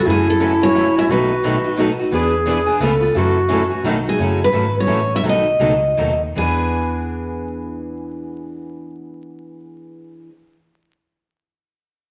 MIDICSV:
0, 0, Header, 1, 6, 480
1, 0, Start_track
1, 0, Tempo, 343249
1, 83, Time_signature, 3, 2, 24, 8
1, 6322, Tempo, 357995
1, 7762, Tempo, 387597
1, 8722, Tempo, 404040
1, 15534, End_track
2, 0, Start_track
2, 0, Title_t, "Steel-string acoustic guitar"
2, 0, Program_c, 0, 25
2, 136, Note_on_c, 0, 68, 81
2, 382, Note_off_c, 0, 68, 0
2, 417, Note_on_c, 0, 69, 74
2, 881, Note_on_c, 0, 73, 87
2, 889, Note_off_c, 0, 69, 0
2, 1314, Note_off_c, 0, 73, 0
2, 1377, Note_on_c, 0, 76, 95
2, 1447, Note_off_c, 0, 76, 0
2, 1563, Note_on_c, 0, 71, 82
2, 5324, Note_off_c, 0, 71, 0
2, 5715, Note_on_c, 0, 68, 67
2, 6178, Note_off_c, 0, 68, 0
2, 6211, Note_on_c, 0, 71, 75
2, 6614, Note_off_c, 0, 71, 0
2, 6700, Note_on_c, 0, 73, 79
2, 7140, Note_off_c, 0, 73, 0
2, 7175, Note_on_c, 0, 76, 88
2, 7238, Note_off_c, 0, 76, 0
2, 7355, Note_on_c, 0, 75, 74
2, 8517, Note_off_c, 0, 75, 0
2, 8728, Note_on_c, 0, 80, 57
2, 13340, Note_off_c, 0, 80, 0
2, 15534, End_track
3, 0, Start_track
3, 0, Title_t, "Clarinet"
3, 0, Program_c, 1, 71
3, 88, Note_on_c, 1, 64, 89
3, 1540, Note_on_c, 1, 66, 90
3, 1561, Note_off_c, 1, 64, 0
3, 2614, Note_off_c, 1, 66, 0
3, 2979, Note_on_c, 1, 68, 90
3, 3948, Note_on_c, 1, 69, 77
3, 3969, Note_off_c, 1, 68, 0
3, 4426, Note_on_c, 1, 66, 92
3, 4447, Note_off_c, 1, 69, 0
3, 5372, Note_off_c, 1, 66, 0
3, 5384, Note_on_c, 1, 63, 60
3, 5818, Note_off_c, 1, 63, 0
3, 15534, End_track
4, 0, Start_track
4, 0, Title_t, "Steel-string acoustic guitar"
4, 0, Program_c, 2, 25
4, 82, Note_on_c, 2, 54, 59
4, 82, Note_on_c, 2, 61, 68
4, 100, Note_on_c, 2, 64, 63
4, 102, Note_on_c, 2, 69, 65
4, 372, Note_off_c, 2, 54, 0
4, 372, Note_off_c, 2, 61, 0
4, 381, Note_off_c, 2, 64, 0
4, 382, Note_off_c, 2, 69, 0
4, 557, Note_on_c, 2, 61, 87
4, 563, Note_on_c, 2, 54, 77
4, 568, Note_on_c, 2, 64, 84
4, 574, Note_on_c, 2, 69, 91
4, 713, Note_off_c, 2, 61, 0
4, 716, Note_off_c, 2, 54, 0
4, 718, Note_off_c, 2, 64, 0
4, 721, Note_off_c, 2, 69, 0
4, 1039, Note_on_c, 2, 54, 65
4, 1044, Note_on_c, 2, 61, 74
4, 1059, Note_on_c, 2, 64, 72
4, 1061, Note_on_c, 2, 69, 75
4, 1194, Note_off_c, 2, 54, 0
4, 1196, Note_off_c, 2, 61, 0
4, 1204, Note_off_c, 2, 64, 0
4, 1205, Note_off_c, 2, 69, 0
4, 1526, Note_on_c, 2, 47, 60
4, 1531, Note_on_c, 2, 54, 66
4, 1535, Note_on_c, 2, 63, 72
4, 1538, Note_on_c, 2, 51, 62
4, 1543, Note_on_c, 2, 69, 66
4, 1544, Note_on_c, 2, 59, 66
4, 1813, Note_off_c, 2, 47, 0
4, 1815, Note_off_c, 2, 54, 0
4, 1818, Note_off_c, 2, 63, 0
4, 1819, Note_off_c, 2, 51, 0
4, 1822, Note_off_c, 2, 59, 0
4, 1822, Note_off_c, 2, 69, 0
4, 2005, Note_on_c, 2, 47, 78
4, 2013, Note_on_c, 2, 54, 82
4, 2014, Note_on_c, 2, 59, 82
4, 2018, Note_on_c, 2, 63, 80
4, 2020, Note_on_c, 2, 51, 74
4, 2027, Note_on_c, 2, 69, 84
4, 2156, Note_off_c, 2, 47, 0
4, 2160, Note_off_c, 2, 54, 0
4, 2161, Note_off_c, 2, 59, 0
4, 2163, Note_off_c, 2, 51, 0
4, 2163, Note_off_c, 2, 63, 0
4, 2167, Note_off_c, 2, 69, 0
4, 2496, Note_on_c, 2, 47, 78
4, 2500, Note_on_c, 2, 51, 67
4, 2504, Note_on_c, 2, 59, 78
4, 2507, Note_on_c, 2, 54, 83
4, 2516, Note_on_c, 2, 63, 86
4, 2516, Note_on_c, 2, 69, 84
4, 2641, Note_off_c, 2, 47, 0
4, 2644, Note_off_c, 2, 51, 0
4, 2645, Note_off_c, 2, 59, 0
4, 2647, Note_off_c, 2, 54, 0
4, 2651, Note_off_c, 2, 63, 0
4, 2651, Note_off_c, 2, 69, 0
4, 2978, Note_on_c, 2, 52, 69
4, 2982, Note_on_c, 2, 59, 66
4, 2985, Note_on_c, 2, 62, 68
4, 2994, Note_on_c, 2, 68, 61
4, 2998, Note_on_c, 2, 71, 68
4, 3259, Note_off_c, 2, 52, 0
4, 3261, Note_off_c, 2, 59, 0
4, 3262, Note_off_c, 2, 62, 0
4, 3266, Note_off_c, 2, 68, 0
4, 3269, Note_off_c, 2, 71, 0
4, 3436, Note_on_c, 2, 52, 74
4, 3455, Note_on_c, 2, 62, 83
4, 3456, Note_on_c, 2, 68, 77
4, 3458, Note_on_c, 2, 59, 78
4, 3467, Note_on_c, 2, 71, 90
4, 3591, Note_off_c, 2, 52, 0
4, 3600, Note_off_c, 2, 62, 0
4, 3601, Note_off_c, 2, 68, 0
4, 3602, Note_off_c, 2, 59, 0
4, 3606, Note_off_c, 2, 71, 0
4, 3944, Note_on_c, 2, 49, 81
4, 3947, Note_on_c, 2, 57, 77
4, 3963, Note_on_c, 2, 65, 83
4, 3964, Note_on_c, 2, 59, 80
4, 3974, Note_on_c, 2, 71, 94
4, 4085, Note_off_c, 2, 49, 0
4, 4087, Note_off_c, 2, 57, 0
4, 4094, Note_off_c, 2, 65, 0
4, 4095, Note_off_c, 2, 59, 0
4, 4100, Note_off_c, 2, 71, 0
4, 4432, Note_on_c, 2, 54, 64
4, 4433, Note_on_c, 2, 61, 68
4, 4444, Note_on_c, 2, 64, 65
4, 4451, Note_on_c, 2, 69, 73
4, 4705, Note_off_c, 2, 54, 0
4, 4706, Note_off_c, 2, 61, 0
4, 4712, Note_off_c, 2, 64, 0
4, 4715, Note_off_c, 2, 69, 0
4, 4910, Note_on_c, 2, 61, 82
4, 4911, Note_on_c, 2, 54, 83
4, 4921, Note_on_c, 2, 64, 82
4, 4935, Note_on_c, 2, 69, 92
4, 5048, Note_off_c, 2, 61, 0
4, 5049, Note_off_c, 2, 54, 0
4, 5054, Note_off_c, 2, 64, 0
4, 5060, Note_off_c, 2, 69, 0
4, 5369, Note_on_c, 2, 47, 63
4, 5376, Note_on_c, 2, 51, 81
4, 5382, Note_on_c, 2, 54, 69
4, 5384, Note_on_c, 2, 59, 80
4, 5390, Note_on_c, 2, 63, 77
4, 5392, Note_on_c, 2, 69, 83
4, 5517, Note_off_c, 2, 47, 0
4, 5521, Note_off_c, 2, 51, 0
4, 5524, Note_off_c, 2, 54, 0
4, 5525, Note_off_c, 2, 59, 0
4, 5528, Note_off_c, 2, 63, 0
4, 5529, Note_off_c, 2, 69, 0
4, 5879, Note_on_c, 2, 54, 62
4, 5880, Note_on_c, 2, 61, 60
4, 5889, Note_on_c, 2, 64, 59
4, 5900, Note_on_c, 2, 69, 69
4, 6150, Note_off_c, 2, 54, 0
4, 6150, Note_off_c, 2, 61, 0
4, 6155, Note_off_c, 2, 64, 0
4, 6160, Note_off_c, 2, 69, 0
4, 6331, Note_on_c, 2, 54, 66
4, 6344, Note_on_c, 2, 61, 77
4, 6345, Note_on_c, 2, 64, 77
4, 6350, Note_on_c, 2, 69, 80
4, 6475, Note_off_c, 2, 54, 0
4, 6481, Note_off_c, 2, 61, 0
4, 6482, Note_off_c, 2, 64, 0
4, 6484, Note_off_c, 2, 69, 0
4, 6782, Note_on_c, 2, 61, 77
4, 6789, Note_on_c, 2, 54, 67
4, 6792, Note_on_c, 2, 64, 72
4, 6792, Note_on_c, 2, 69, 75
4, 6938, Note_off_c, 2, 61, 0
4, 6941, Note_off_c, 2, 54, 0
4, 6943, Note_off_c, 2, 64, 0
4, 6943, Note_off_c, 2, 69, 0
4, 7271, Note_on_c, 2, 47, 56
4, 7276, Note_on_c, 2, 54, 61
4, 7279, Note_on_c, 2, 51, 52
4, 7282, Note_on_c, 2, 59, 68
4, 7286, Note_on_c, 2, 63, 63
4, 7300, Note_on_c, 2, 69, 68
4, 7565, Note_off_c, 2, 47, 0
4, 7568, Note_off_c, 2, 54, 0
4, 7569, Note_off_c, 2, 51, 0
4, 7571, Note_off_c, 2, 59, 0
4, 7573, Note_off_c, 2, 63, 0
4, 7579, Note_off_c, 2, 69, 0
4, 7755, Note_on_c, 2, 47, 73
4, 7760, Note_on_c, 2, 51, 67
4, 7769, Note_on_c, 2, 54, 77
4, 7772, Note_on_c, 2, 63, 74
4, 7773, Note_on_c, 2, 69, 85
4, 7774, Note_on_c, 2, 59, 78
4, 7907, Note_off_c, 2, 47, 0
4, 7909, Note_off_c, 2, 51, 0
4, 7914, Note_off_c, 2, 54, 0
4, 7915, Note_off_c, 2, 63, 0
4, 7915, Note_off_c, 2, 69, 0
4, 7916, Note_off_c, 2, 59, 0
4, 8227, Note_on_c, 2, 47, 57
4, 8238, Note_on_c, 2, 51, 65
4, 8238, Note_on_c, 2, 54, 63
4, 8241, Note_on_c, 2, 63, 72
4, 8244, Note_on_c, 2, 69, 62
4, 8246, Note_on_c, 2, 59, 67
4, 8383, Note_off_c, 2, 47, 0
4, 8389, Note_off_c, 2, 51, 0
4, 8389, Note_off_c, 2, 54, 0
4, 8391, Note_off_c, 2, 63, 0
4, 8392, Note_off_c, 2, 69, 0
4, 8393, Note_off_c, 2, 59, 0
4, 8701, Note_on_c, 2, 52, 72
4, 8717, Note_on_c, 2, 59, 64
4, 8725, Note_on_c, 2, 62, 65
4, 8730, Note_on_c, 2, 68, 72
4, 8745, Note_on_c, 2, 71, 76
4, 13375, Note_off_c, 2, 52, 0
4, 13382, Note_off_c, 2, 59, 0
4, 13386, Note_off_c, 2, 62, 0
4, 13389, Note_off_c, 2, 68, 0
4, 13396, Note_off_c, 2, 71, 0
4, 15534, End_track
5, 0, Start_track
5, 0, Title_t, "Steel-string acoustic guitar"
5, 0, Program_c, 3, 25
5, 65, Note_on_c, 3, 49, 65
5, 70, Note_on_c, 3, 52, 64
5, 71, Note_on_c, 3, 66, 68
5, 76, Note_on_c, 3, 57, 60
5, 81, Note_on_c, 3, 61, 56
5, 363, Note_off_c, 3, 49, 0
5, 366, Note_off_c, 3, 52, 0
5, 366, Note_off_c, 3, 66, 0
5, 369, Note_off_c, 3, 57, 0
5, 371, Note_off_c, 3, 61, 0
5, 561, Note_on_c, 3, 49, 71
5, 564, Note_on_c, 3, 52, 81
5, 576, Note_on_c, 3, 57, 78
5, 577, Note_on_c, 3, 66, 84
5, 579, Note_on_c, 3, 61, 88
5, 714, Note_off_c, 3, 49, 0
5, 716, Note_off_c, 3, 52, 0
5, 722, Note_off_c, 3, 57, 0
5, 723, Note_off_c, 3, 66, 0
5, 724, Note_off_c, 3, 61, 0
5, 860, Note_on_c, 3, 66, 53
5, 877, Note_on_c, 3, 61, 48
5, 888, Note_on_c, 3, 57, 45
5, 1037, Note_off_c, 3, 57, 0
5, 1037, Note_off_c, 3, 66, 0
5, 1045, Note_off_c, 3, 61, 0
5, 1045, Note_on_c, 3, 49, 85
5, 1051, Note_on_c, 3, 52, 86
5, 1054, Note_on_c, 3, 57, 86
5, 1063, Note_on_c, 3, 61, 86
5, 1063, Note_on_c, 3, 66, 88
5, 1196, Note_off_c, 3, 49, 0
5, 1200, Note_off_c, 3, 52, 0
5, 1201, Note_off_c, 3, 57, 0
5, 1205, Note_off_c, 3, 61, 0
5, 1205, Note_off_c, 3, 66, 0
5, 1334, Note_on_c, 3, 66, 52
5, 1356, Note_on_c, 3, 61, 49
5, 1370, Note_on_c, 3, 57, 51
5, 1513, Note_off_c, 3, 66, 0
5, 1524, Note_off_c, 3, 61, 0
5, 1528, Note_off_c, 3, 57, 0
5, 1544, Note_on_c, 3, 47, 64
5, 1545, Note_on_c, 3, 54, 58
5, 1545, Note_on_c, 3, 57, 62
5, 1554, Note_on_c, 3, 66, 63
5, 1555, Note_on_c, 3, 63, 67
5, 1822, Note_off_c, 3, 47, 0
5, 1823, Note_off_c, 3, 54, 0
5, 1823, Note_off_c, 3, 57, 0
5, 1827, Note_off_c, 3, 63, 0
5, 1827, Note_off_c, 3, 66, 0
5, 2009, Note_on_c, 3, 47, 75
5, 2013, Note_on_c, 3, 54, 76
5, 2018, Note_on_c, 3, 63, 93
5, 2023, Note_on_c, 3, 57, 77
5, 2026, Note_on_c, 3, 66, 92
5, 2158, Note_off_c, 3, 47, 0
5, 2160, Note_off_c, 3, 54, 0
5, 2162, Note_off_c, 3, 63, 0
5, 2165, Note_off_c, 3, 57, 0
5, 2167, Note_off_c, 3, 66, 0
5, 2296, Note_on_c, 3, 66, 57
5, 2309, Note_on_c, 3, 63, 51
5, 2315, Note_on_c, 3, 57, 47
5, 2464, Note_off_c, 3, 57, 0
5, 2471, Note_on_c, 3, 47, 81
5, 2473, Note_off_c, 3, 63, 0
5, 2474, Note_off_c, 3, 66, 0
5, 2480, Note_on_c, 3, 57, 87
5, 2481, Note_on_c, 3, 54, 89
5, 2489, Note_on_c, 3, 63, 93
5, 2500, Note_on_c, 3, 66, 92
5, 2629, Note_off_c, 3, 47, 0
5, 2634, Note_off_c, 3, 54, 0
5, 2634, Note_off_c, 3, 57, 0
5, 2638, Note_off_c, 3, 63, 0
5, 2643, Note_off_c, 3, 66, 0
5, 2787, Note_on_c, 3, 66, 65
5, 2802, Note_on_c, 3, 63, 60
5, 2816, Note_on_c, 3, 57, 50
5, 2949, Note_on_c, 3, 52, 63
5, 2952, Note_off_c, 3, 57, 0
5, 2958, Note_on_c, 3, 59, 69
5, 2960, Note_off_c, 3, 63, 0
5, 2960, Note_off_c, 3, 66, 0
5, 2965, Note_on_c, 3, 62, 58
5, 2974, Note_on_c, 3, 68, 73
5, 3244, Note_off_c, 3, 52, 0
5, 3249, Note_off_c, 3, 59, 0
5, 3252, Note_off_c, 3, 62, 0
5, 3257, Note_off_c, 3, 68, 0
5, 3435, Note_on_c, 3, 52, 75
5, 3445, Note_on_c, 3, 62, 86
5, 3447, Note_on_c, 3, 68, 81
5, 3448, Note_on_c, 3, 59, 80
5, 3591, Note_off_c, 3, 52, 0
5, 3596, Note_off_c, 3, 62, 0
5, 3597, Note_off_c, 3, 59, 0
5, 3597, Note_off_c, 3, 68, 0
5, 3723, Note_on_c, 3, 68, 64
5, 3744, Note_on_c, 3, 62, 47
5, 3754, Note_on_c, 3, 59, 52
5, 3907, Note_off_c, 3, 68, 0
5, 3911, Note_off_c, 3, 59, 0
5, 3918, Note_off_c, 3, 62, 0
5, 3922, Note_on_c, 3, 49, 96
5, 3927, Note_on_c, 3, 59, 100
5, 3931, Note_on_c, 3, 57, 91
5, 3934, Note_on_c, 3, 65, 97
5, 3937, Note_on_c, 3, 71, 90
5, 4074, Note_off_c, 3, 49, 0
5, 4077, Note_off_c, 3, 59, 0
5, 4078, Note_off_c, 3, 57, 0
5, 4080, Note_off_c, 3, 65, 0
5, 4082, Note_off_c, 3, 71, 0
5, 4197, Note_on_c, 3, 71, 62
5, 4210, Note_on_c, 3, 65, 53
5, 4227, Note_on_c, 3, 59, 46
5, 4384, Note_off_c, 3, 71, 0
5, 4391, Note_off_c, 3, 65, 0
5, 4399, Note_off_c, 3, 59, 0
5, 4399, Note_on_c, 3, 49, 65
5, 4402, Note_on_c, 3, 61, 58
5, 4406, Note_on_c, 3, 57, 65
5, 4408, Note_on_c, 3, 52, 61
5, 4414, Note_on_c, 3, 66, 64
5, 4689, Note_off_c, 3, 49, 0
5, 4690, Note_off_c, 3, 61, 0
5, 4692, Note_off_c, 3, 57, 0
5, 4693, Note_off_c, 3, 52, 0
5, 4696, Note_off_c, 3, 66, 0
5, 4874, Note_on_c, 3, 57, 82
5, 4876, Note_on_c, 3, 49, 80
5, 4878, Note_on_c, 3, 52, 90
5, 4885, Note_on_c, 3, 61, 82
5, 4888, Note_on_c, 3, 66, 92
5, 5030, Note_off_c, 3, 57, 0
5, 5031, Note_off_c, 3, 49, 0
5, 5032, Note_off_c, 3, 52, 0
5, 5036, Note_off_c, 3, 61, 0
5, 5037, Note_off_c, 3, 66, 0
5, 5172, Note_on_c, 3, 66, 55
5, 5182, Note_on_c, 3, 61, 48
5, 5195, Note_on_c, 3, 57, 46
5, 5352, Note_off_c, 3, 66, 0
5, 5357, Note_off_c, 3, 61, 0
5, 5363, Note_off_c, 3, 57, 0
5, 5379, Note_on_c, 3, 47, 82
5, 5389, Note_on_c, 3, 54, 73
5, 5390, Note_on_c, 3, 57, 94
5, 5398, Note_on_c, 3, 66, 91
5, 5403, Note_on_c, 3, 63, 92
5, 5522, Note_off_c, 3, 47, 0
5, 5528, Note_off_c, 3, 54, 0
5, 5528, Note_off_c, 3, 57, 0
5, 5532, Note_off_c, 3, 66, 0
5, 5534, Note_off_c, 3, 63, 0
5, 5672, Note_on_c, 3, 66, 63
5, 5684, Note_on_c, 3, 63, 52
5, 5694, Note_on_c, 3, 57, 45
5, 5835, Note_off_c, 3, 57, 0
5, 5842, Note_off_c, 3, 66, 0
5, 5844, Note_on_c, 3, 49, 57
5, 5848, Note_off_c, 3, 63, 0
5, 5851, Note_on_c, 3, 57, 56
5, 5853, Note_on_c, 3, 52, 59
5, 5859, Note_on_c, 3, 66, 65
5, 5860, Note_on_c, 3, 61, 66
5, 6132, Note_off_c, 3, 49, 0
5, 6136, Note_off_c, 3, 57, 0
5, 6137, Note_off_c, 3, 52, 0
5, 6140, Note_off_c, 3, 61, 0
5, 6140, Note_off_c, 3, 66, 0
5, 6327, Note_on_c, 3, 52, 73
5, 6329, Note_on_c, 3, 49, 72
5, 6335, Note_on_c, 3, 61, 76
5, 6340, Note_on_c, 3, 57, 83
5, 6345, Note_on_c, 3, 66, 84
5, 6473, Note_off_c, 3, 52, 0
5, 6474, Note_off_c, 3, 49, 0
5, 6477, Note_off_c, 3, 61, 0
5, 6479, Note_off_c, 3, 57, 0
5, 6482, Note_off_c, 3, 66, 0
5, 6790, Note_on_c, 3, 49, 85
5, 6797, Note_on_c, 3, 61, 96
5, 6801, Note_on_c, 3, 57, 76
5, 6803, Note_on_c, 3, 52, 83
5, 6809, Note_on_c, 3, 66, 87
5, 6942, Note_off_c, 3, 49, 0
5, 6945, Note_off_c, 3, 61, 0
5, 6947, Note_off_c, 3, 57, 0
5, 6948, Note_off_c, 3, 52, 0
5, 6951, Note_off_c, 3, 66, 0
5, 7274, Note_on_c, 3, 54, 60
5, 7276, Note_on_c, 3, 57, 55
5, 7277, Note_on_c, 3, 47, 49
5, 7286, Note_on_c, 3, 63, 61
5, 7286, Note_on_c, 3, 66, 63
5, 7567, Note_off_c, 3, 54, 0
5, 7568, Note_off_c, 3, 47, 0
5, 7568, Note_off_c, 3, 57, 0
5, 7573, Note_off_c, 3, 63, 0
5, 7573, Note_off_c, 3, 66, 0
5, 7775, Note_on_c, 3, 47, 79
5, 7775, Note_on_c, 3, 66, 81
5, 7777, Note_on_c, 3, 54, 72
5, 7779, Note_on_c, 3, 57, 76
5, 7779, Note_on_c, 3, 63, 81
5, 7916, Note_off_c, 3, 47, 0
5, 7916, Note_off_c, 3, 66, 0
5, 7917, Note_off_c, 3, 54, 0
5, 7918, Note_off_c, 3, 57, 0
5, 7918, Note_off_c, 3, 63, 0
5, 8228, Note_on_c, 3, 47, 76
5, 8234, Note_on_c, 3, 57, 81
5, 8235, Note_on_c, 3, 54, 71
5, 8238, Note_on_c, 3, 63, 88
5, 8246, Note_on_c, 3, 66, 80
5, 8384, Note_off_c, 3, 47, 0
5, 8387, Note_off_c, 3, 54, 0
5, 8387, Note_off_c, 3, 57, 0
5, 8389, Note_off_c, 3, 63, 0
5, 8393, Note_off_c, 3, 66, 0
5, 8712, Note_on_c, 3, 52, 70
5, 8724, Note_on_c, 3, 59, 68
5, 8732, Note_on_c, 3, 62, 78
5, 8752, Note_on_c, 3, 68, 66
5, 13380, Note_off_c, 3, 52, 0
5, 13385, Note_off_c, 3, 59, 0
5, 13389, Note_off_c, 3, 62, 0
5, 13400, Note_off_c, 3, 68, 0
5, 15534, End_track
6, 0, Start_track
6, 0, Title_t, "Fingered electric bass"
6, 0, Program_c, 4, 33
6, 82, Note_on_c, 4, 42, 81
6, 1233, Note_off_c, 4, 42, 0
6, 1521, Note_on_c, 4, 35, 80
6, 2672, Note_off_c, 4, 35, 0
6, 2966, Note_on_c, 4, 40, 75
6, 3731, Note_off_c, 4, 40, 0
6, 3916, Note_on_c, 4, 37, 93
6, 4301, Note_off_c, 4, 37, 0
6, 4405, Note_on_c, 4, 42, 82
6, 5170, Note_off_c, 4, 42, 0
6, 5366, Note_on_c, 4, 35, 78
6, 5747, Note_off_c, 4, 35, 0
6, 5850, Note_on_c, 4, 30, 71
6, 6231, Note_off_c, 4, 30, 0
6, 6337, Note_on_c, 4, 32, 74
6, 6728, Note_off_c, 4, 32, 0
6, 6798, Note_on_c, 4, 33, 76
6, 7201, Note_off_c, 4, 33, 0
6, 7273, Note_on_c, 4, 35, 74
6, 7665, Note_off_c, 4, 35, 0
6, 7760, Note_on_c, 4, 37, 71
6, 8160, Note_off_c, 4, 37, 0
6, 8235, Note_on_c, 4, 39, 66
6, 8650, Note_off_c, 4, 39, 0
6, 8716, Note_on_c, 4, 40, 68
6, 13334, Note_off_c, 4, 40, 0
6, 15534, End_track
0, 0, End_of_file